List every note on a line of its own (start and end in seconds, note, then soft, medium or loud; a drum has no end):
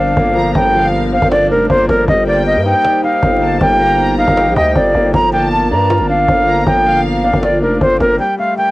0.00 0.16 G1 loud
0.00 0.55 G2 loud
0.00 0.17 F3 medium
0.00 1.13 C4 medium
0.00 0.74 D4 loud
0.00 2.05 D4 medium
0.00 2.05 A#4 medium
0.00 8.16 C5 medium
0.00 0.52 F5 medium
0.17 0.54 G1 loud
0.17 1.12 A#3 medium
0.17 cajon bass loud
0.36 0.73 F3 medium
0.36 0.54 A#5 medium
0.55 1.19 G1 loud
0.55 1.51 G2 loud
0.55 0.87 G5 loud
0.55 cajon bass loud
0.74 1.70 F3 medium
0.74 1.28 F5 medium
0.74 cajon slap soft
1.12 1.49 C4 medium
1.12 1.28 F5 medium
1.22 1.52 G1 loud
1.22 cajon bass loud
1.32 2.08 D4 loud
1.32 1.47 D5 medium
1.32 cajon slap loud
1.51 1.69 F1 loud
1.51 2.08 C4 medium
1.51 1.66 A#4 medium
1.51 cajon slap soft
1.70 1.88 G1 loud
1.70 2.08 A#3 loud
1.70 1.86 C5 medium
1.70 cajon bass loud
1.89 2.07 G1 loud
1.89 2.08 F3 medium
1.89 2.05 A#4 medium
1.89 cajon slap medium
2.02 cajon slap soft
2.08 2.57 G1 loud
2.08 3.03 G3 loud
2.08 5.11 D#4 medium
2.08 2.24 D#5 medium
2.08 5.11 G5 medium
2.08 cajon bass loud
2.27 3.23 A#3 medium
2.27 2.43 D5 medium
2.27 2.81 G5 medium
2.27 cajon slap soft
2.46 2.62 D#5 medium
2.46 cajon slap soft
2.56 2.74 G2 loud
2.65 3.02 D#4 medium
2.65 3.01 G5 medium
2.84 3.80 G4 loud
2.84 cajon slap loud
3.04 3.99 D#4 medium
3.04 3.58 F5 medium
3.04 cajon slap soft
3.23 3.59 G1 loud
3.23 4.18 C4 medium
3.23 cajon bass loud
3.42 3.78 A#3 medium
3.42 3.60 A5 medium
3.42 cajon slap soft
3.61 4.25 G1 loud
3.61 4.57 G3 loud
3.61 4.15 G5 loud
3.61 cajon bass loud
3.80 4.76 A#3 medium
3.80 4.53 A#5 medium
3.80 cajon slap soft
3.99 cajon slap soft
4.18 4.55 D#4 medium
4.18 4.54 F5 medium
4.28 4.48 G1 loud
4.28 cajon bass loud
4.37 5.14 G4 loud
4.37 cajon slap loud
4.47 4.56 A#1 loud
4.56 4.75 D2 loud
4.56 5.14 D#4 medium
4.56 4.72 D#5 medium
4.56 4.75 G5 medium
4.56 cajon bass medium
4.56 cajon slap medium
4.76 4.94 G1 loud
4.76 5.14 C4 medium
4.76 5.12 D5 medium
4.76 cajon bass loud
4.95 5.13 G1 loud
4.95 5.14 A#3 medium
4.95 cajon slap soft
5.14 5.73 G1 loud
5.14 6.10 F3 medium
5.14 8.16 D4 medium
5.14 8.16 A#4 medium
5.14 5.29 A#5 loud
5.14 cajon bass loud
5.33 6.28 A#3 medium
5.33 5.49 G5 medium
5.33 5.87 A5 medium
5.52 5.68 A5 medium
5.52 cajon slap soft
5.71 6.01 G2 loud
5.71 6.08 D4 medium
5.71 6.07 A#5 medium
5.90 6.86 F4 loud
5.90 cajon slap loud
6.00 6.27 G1 loud
6.09 7.05 D4 medium
6.09 6.63 F5 medium
6.09 cajon slap soft
6.28 6.65 G1 loud
6.28 7.24 C4 medium
6.28 cajon bass loud
6.48 6.84 A#3 medium
6.48 6.66 A#5 medium
6.48 cajon slap soft
6.66 7.31 G1 loud
6.66 7.62 F3 medium
6.66 7.00 G5 loud
6.66 cajon bass loud
6.86 7.81 A#3 medium
6.86 7.40 F5 loud
6.86 cajon slap soft
7.05 cajon slap soft
7.24 7.61 D4 medium
7.24 7.40 F5 medium
7.34 7.64 G1 loud
7.34 cajon bass loud
7.43 8.20 F4 loud
7.43 7.59 D5 medium
7.43 cajon slap loud
7.62 7.80 F1 loud
7.62 8.20 D4 medium
7.62 7.78 A#4 medium
7.62 cajon slap soft
7.81 8.00 G1 loud
7.81 8.20 C4 loud
7.81 7.97 C5 medium
7.81 cajon bass loud
8.00 8.19 G1 loud
8.00 8.20 A#3 medium
8.00 8.16 A#4 medium
8.00 cajon slap medium
8.13 cajon slap soft
8.19 8.71 G3 medium
8.19 8.35 G5 medium
8.19 cajon slap soft
8.39 8.71 A3 medium
8.39 8.54 F5 medium
8.39 cajon slap soft
8.58 8.71 G5 medium
8.58 cajon slap soft